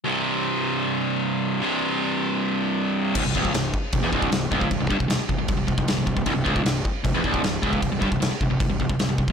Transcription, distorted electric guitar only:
X:1
M:4/4
L:1/16
Q:1/4=154
K:none
V:1 name="Distorted electric guitar" clef=bass
[C,,G,,C,]16 | [C,,G,,C,]16 | C,, C,, _D,,2 C,,2 z2 C,, E,, C,,2 C,,2 D,,2 | C,, C,, G,, C,, C,, z C,, C,, C,, C,, C,, C,, C,, C,, C,, C,, |
C,, C,, _D,,2 C,,2 z2 C,, E,, C,,2 C,,2 D,,2 | C,, C,, G,, C,, C,, z C,, C,, C,, C,, C,, C,, C,, C,, C,, z |]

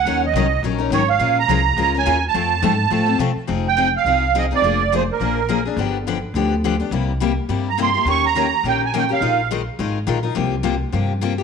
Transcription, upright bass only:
X:1
M:4/4
L:1/8
Q:"Swing" 1/4=210
K:Fphr
V:1 name="Upright bass" clef=bass
E,,2 C,,2 B,,,2 A,,,2 | B,,,2 C,,2 D,,2 E,,2 | F,,2 A,,2 =A,,2 C, z | [K:Fm] F,,,4 C,,4 |
F,,,4 B,,,4 | G,,,4 =D,,4 | C,,4 G,,4 | E,,4 B,,,4 |
B,,,4 A,,,2 B,,,2 | C,,4 G,,4 |]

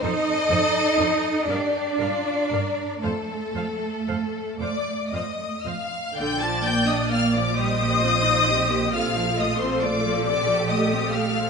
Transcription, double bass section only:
X:1
M:6/8
L:1/8
Q:3/8=42
K:Fmix
V:1 name="Double bass section" clef=bass
F,, F,, F,, G,, G,, G,, | F,, F,, F,, F,, F,, F,, | B,,,6- | B,,,6 |]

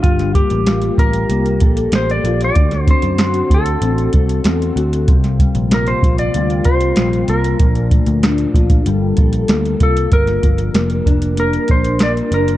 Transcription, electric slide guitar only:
X:1
M:4/4
L:1/16
Q:1/4=95
K:Gm
V:1 name="Electric slide guitar"
F2 G4 B4 z2 c d2 d- | d2 c4 A4 z6 | z4 B c2 d3 c4 B2- | B2 z12 A2 |
B8 B2 c2 d2 B2 |]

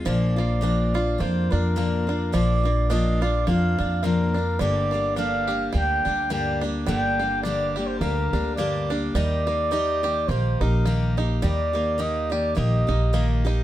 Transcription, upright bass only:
X:1
M:4/4
L:1/8
Q:"Swing" 1/4=106
K:Bb
V:1 name="Upright bass" clef=bass
B,,,4 F,, F,,3 | B,,,4 F,, F,,3 | G,,,4 D,, D,,3 | G,,,4 D,, D,,3 |
E,,4 B,,, B,,,3 | E,,4 B,,, B,,,3 |]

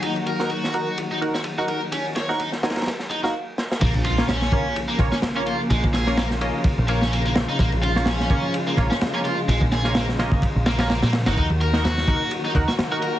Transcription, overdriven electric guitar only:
X:1
M:4/4
L:1/16
Q:"Swing 16ths" 1/4=127
K:Bbm
V:1 name="Overdriven electric guitar"
E z B2 G4 z E z G z G B z | D z d2 E z4 z E G z4 | B, z F2 D4 z B, z D z D F z | A, z A2 B, z4 z B, D B, B, z E |
B, z F2 D4 z B, z D z D F z | A, z A2 B, z4 z B, D B, B, z E | E z B2 G4 z E z G z G B z |]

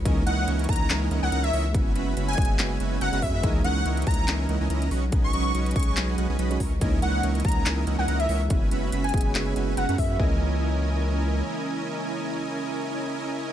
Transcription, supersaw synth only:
X:1
M:4/4
L:1/16
Q:"Swing 16ths" 1/4=142
K:C#dor
V:1 name="Supersaw synth"
[CEAdg]2 [CEAdc']2 [CEAdc']2 [CA]2 [CEAdg]2 [CEAdf] [CEAdg] [CEAda]2 [CEAdc'] z | [CFBeg]2 [CFBeb]2 [CFBeb]2 [FBeg]2 [CFBeg]2 [CFBeg]2 [CFBea] [CFBea] [CFBe]2 | [CEAdg]2 [CEAdc']2 [CEAdc']2 [CE]2 [CEAdg]2 [CEAdf] [CEAdg] [CEAda]2 [CFBdc'] z | [CFBdg]2 [CFBdc']2 [CFBdc']2 [CFBdg]2 [CFBdg]2 [CFBdf] [CFBdg] [CFBdb]2 [CEAdc'] z |
[CEAdg]2 [CEAdc']2 [CEAdc']2 [CEAdg]2 [CEAdg]2 [CEAdf] [CEAdg] [CEAda]2 [CEAdc'] z | [CFBeg]2 [CFBeb]2 [CFBeb]2 [FBe]2 [CFBeg]2 [CFBeg]2 [CFBea] [CFBea] [CFBeb]2 | [CEAdg]16- | [CEAdg]16 |]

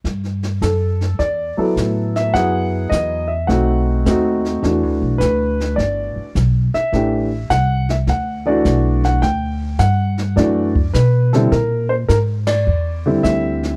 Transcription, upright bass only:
X:1
M:4/4
L:1/8
Q:"Swing" 1/4=105
K:G
V:1 name="Upright bass" clef=bass
G,,2 F,,2 E,, z A,,2 | F,,2 E,,2 B,,,2 ^D,,2 | (3E,, D,, B,,, D,,2 G,,, z B,,, z | A,,,2 C,,2 D,,2 B,,,2 |
D,,2 G,,2 F,,2 B,,2 | _B,,2 _A,,2 E,,2 D,,2 |]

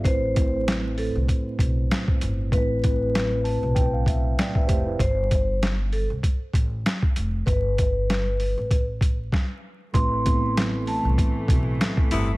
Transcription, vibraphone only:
X:1
M:4/4
L:1/16
Q:"Swing 16ths" 1/4=97
K:Am
V:1 name="Vibraphone"
c4 z2 A z8 z | B8- B z6 z | c4 z2 A z8 z | B8- B z6 z |
c'4 z2 a z8 z |]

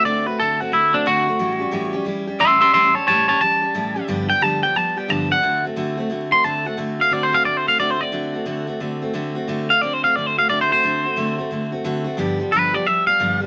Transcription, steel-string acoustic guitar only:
X:1
M:4/4
L:1/8
Q:"Swing" 1/4=178
K:Dmix
V:1 name="Steel-string acoustic guitar"
[D,A,CF] [A,CF] [D,A,CF] [A,CF] [D,A,CF] [A,CF] [D,A,CF] [A,CF] | [A,,E,G,^CG] [G,CG] [A,,E,G,CG] [G,CG] [E,G,CG] [G,CG] [A,,E,G,CG] [G,CG] | [A,,E,G,^CG] [G,CG] [A,,E,G,CG] [G,CG] [E,G,CG] [G,CG] [A,,E,G,CG] [G,CG] | [G,,D,=F,G,B,G] [F,G,G] [G,,D,F,G,B,G] [F,G,B,G] [F,G,B,G] [F,G,B,G] [G,,D,F,G,B,G] [F,G,B,G] |
[D,A,CF] [A,CF] [D,A,CF] [A,CF] [D,A,CF] [A,CF] [D,A,CF] [A,CF] | [D,A,CF] [A,CF] [D,A,CF] [A,CF] [D,A,CF] [A,CF] [D,A,CF] [A,CF] | [D,A,CF] [A,CF] [D,A,CF] [A,CF] [D,A,CF] [A,CF] [D,A,CF] [A,CF] | [D,A,CF] [A,CF] [D,A,CF] [A,CF] [D,A,CF] [A,CF] [D,A,CF] [A,CF] |
[D,A,CF] [A,CF] [D,A,CF] [A,CF] [D,A,CF] [A,CF] [D,A,CF] [A,CF] | [G,,D,=F,G,B,G] [F,G,B,G] [G,,D,F,G,B,G] [F,G,B,G] [F,G,B,G] [F,G,B,G] [G,,D,F,G,B,G] [F,G,B,G] |]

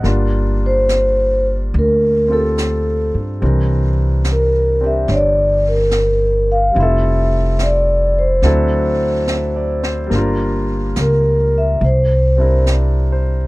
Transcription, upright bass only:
X:1
M:4/4
L:1/8
Q:"Swing" 1/4=71
K:Gdor
V:1 name="Upright bass" clef=bass
G,,,4 D,,3 G,, | C,,4 G,,,4 | F,,,4 D,,4 | G,,,2 _D,,2 C,,4 |]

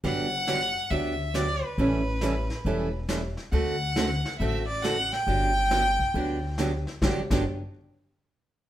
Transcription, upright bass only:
X:1
M:4/4
L:1/8
Q:"Swing" 1/4=138
K:G
V:1 name="Upright bass" clef=bass
G,,,4 D,,4 | A,,,4 E,,,4 | D,,4 A,,,4 | G,,,4 D,,4 |
G,,, G,,, z6 |]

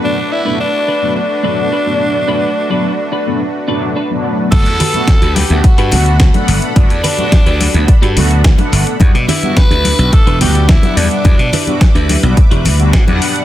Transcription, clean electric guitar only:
X:1
M:4/4
L:1/16
Q:1/4=107
K:G
V:1 name="Clean electric guitar"
[DAB]2 z [DAB] z2 [DAB]2 z2 [DAB] z [DAB] z3 | [DAB]2 z [DAB] z2 [DAB]2 z2 [DAB] z [DAB] z3 | z2 [FGAB]2 z [FGAB]2 z2 [FGAB]2 z4 z | z2 [FGAB]2 z [FGAB]2 z2 [FGAB]2 z4 z |
z2 [DEGB]2 z [DEGB]2 z2 [DEGB]2 z4 z | z2 [DEGB]2 z [DEGB]2 z2 [DEGB]2 z4 z |]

